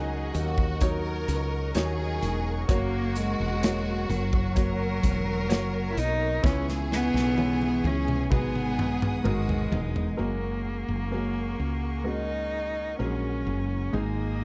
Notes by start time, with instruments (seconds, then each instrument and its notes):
Already playing: fretless electric bass C#2, grand piano D#3 F#3 D#4 F#4 C#5, nylon-string guitar F#3 C#4 D#4 A#4, cello D#4, violin section G#4, string section A#4 D#5 F#5 C#6
0.34 fretless electric bass D#2, nylon-string guitar C#4 D#4 A#4, violin section F#4, closed hi-hat
0.58 kick
0.80 grand piano F#3 D#4 C#5, violin section A#4, kick, closed hi-hat
1.28 fretless electric bass C#2, closed hi-hat
1.74 fretless electric bass D#2, nylon-string guitar F#3 C#4 D#4 A#4, grand piano F#3 D#4 C#5, violin section G#4, snare, closed hi-hat
2.21 fretless electric bass E1, nylon-string guitar C#4 D#4 A#4, closed hi-hat
2.68 fretless electric bass F#1, nylon-string guitar F#3 C#4 F#4 A#4, grand piano A#3 F#4 C#5, cello A#3, violin section F#4, string section C#5 F#5, kick, closed hi-hat
3.15 cello G#3, nylon-string guitar C#4 F#4 A#4, closed hi-hat
3.40 fretless electric bass E1
3.62 nylon-string guitar F#3 C#4 F#4 A#4, grand piano A#3 F#4 C#5, snare, closed hi-hat
4.09 fretless electric bass F#1, cello F#3, nylon-string guitar C#4 F#4 A#4, closed hi-hat
4.33 kick
4.55 grand piano A#3 F#4 C#5, violin section A#4, kick, closed hi-hat
5.03 fretless electric bass E1, kick, closed hi-hat
5.49 fretless electric bass F#1, nylon-string guitar F#3 C#4 F#4 A#4, grand piano A#3 F#4 C#5, snare, closed hi-hat
5.91 cello E4
5.97 fretless electric bass B1, nylon-string guitar C#4 F#4 A#4, cello D#4, closed hi-hat
6.43 fretless electric bass C#2, grand piano C#3 B3 E4 C#5, nylon-string guitar C#3 G#3 B3 E4 G#4, string section B3 E5 G#5, cello C#4, violin section G#4, kick, snare
6.69 snare
6.90 nylon-string guitar B3 E4 G#4, cello B3, snare
7.14 fretless electric bass B1, snare
7.36 nylon-string guitar G#3 B3 E4 G#4, grand piano B3 E4 C#5, high tom
7.62 high tom
7.84 fretless electric bass C#2, nylon-string guitar B3 E4 G#4, cello C#4, high tom
8.08 mid tom
8.30 fretless electric bass G#1, grand piano G#2 G#3 F#4 B4, nylon-string guitar G#2 D#3 F#3 B3 D#4 G#4, cello B3, violin section G#4, string section F#5 D#6, kick, mid tom
8.55 mid tom
8.78 fretless electric bass A#1, mid tom
9.02 mid tom
9.24 fretless electric bass G#1, nylon-string guitar F#3 B3 D#4 G#4, grand piano G#3 F#4 A#4, cello G#3, violin section F#4, mid tom
9.49 floor tom
9.71 fretless electric bass E1, nylon-string guitar F#3 B3 D#4 G#4, violin section D#4, floor tom
9.96 floor tom
10.17 fretless electric bass F#1, nylon-string guitar F#3 A#3 C#4 F#4 G#4, grand piano G#3 F#4 A#4, cello A#3, string section A#4 F#5 G#5 C#6
10.64 nylon-string guitar C#4 F#4 G#4
10.88 fretless electric bass F#1
11.11 nylon-string guitar F#3 A#3 C#4 F#4 G#4, grand piano G#3 F#4 A#4
11.58 fretless electric bass C#2, nylon-string guitar C#4 F#4 G#4
12.04 grand piano G#3 F#4 A#4, nylon-string guitar A#3 C#4 F#4 G#4, cello D#4
12.99 fretless electric bass A#1, nylon-string guitar F#3 A#3 C#4 F#4 G#4, grand piano G#3 F#4 A#4, cello C#4
13.46 fretless electric bass F#1, nylon-string guitar C#4 F#4 G#4
13.93 fretless electric bass G#1, grand piano G#2 G#3 D#4 G#4, nylon-string guitar G#2 D#3 G#3 D#4 G#4, cello A#3, string section G#4 D#5 D#6
14.40 nylon-string guitar D#4 G#4